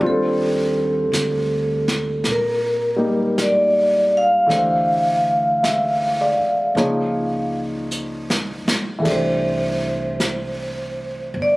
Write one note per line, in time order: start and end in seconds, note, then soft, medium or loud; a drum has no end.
0.00 1.09 D#2 medium
0.00 2.95 G3 soft
0.00 4.51 C4 soft
0.00 4.47 D4 soft
0.00 4.51 F4 soft
0.00 4.50 C5 soft
0.00 0.25 D5 soft
0.00 brush sweep soft
0.07 2.34 A4 medium
1.12 2.20 D2 medium
1.12 brush sweep soft
1.12 snare soft
1.12 hi-hat pedal soft
1.88 snare soft
2.24 4.46 A#2 medium
2.24 brush sweep soft
2.24 snare soft
2.31 3.44 A#4 medium
2.96 4.49 G3 soft
2.96 4.49 A#3 soft
2.96 4.50 D#4 soft
2.96 4.48 G4 soft
3.38 4.16 D5 medium
3.38 brush sweep soft
3.38 snare soft
3.38 hi-hat pedal soft
4.17 7.51 F5 medium
4.46 6.34 D2 medium
4.46 6.75 E3 soft
4.46 6.76 A3 soft
4.46 6.77 D4 soft
4.46 6.77 G4 soft
4.46 brush sweep soft
4.46 snare soft
4.51 6.78 C5 soft
5.63 6.54 E5 soft
5.63 brush sweep soft
5.63 snare soft
5.63 hi-hat pedal soft
6.21 7.02 D5 soft
6.38 muted upright bass stroke soft
6.75 8.62 C#2 medium
6.75 9.05 F3 soft
6.75 9.06 A#3 soft
6.75 9.06 D#4 soft
6.75 9.06 G#4 soft
6.75 9.07 C#5 soft
6.75 brush sweep soft
6.75 snare soft
7.91 hi-hat pedal soft
8.30 snare soft
8.65 muted upright bass stroke soft
8.65 snare medium
8.99 11.57 E3 soft
8.99 11.57 A3 soft
9.04 11.31 C2 medium
9.04 11.57 D4 soft
9.04 11.57 G4 soft
9.04 brush sweep soft
9.04 kick soft
9.04 snare soft
9.04 ride medium
9.10 11.57 C5 soft
9.10 11.44 C5 medium
10.20 brush sweep soft
10.20 snare soft
10.20 hi-hat pedal soft
11.34 11.57 G1 medium
11.34 brush sweep soft
11.42 11.57 D5 medium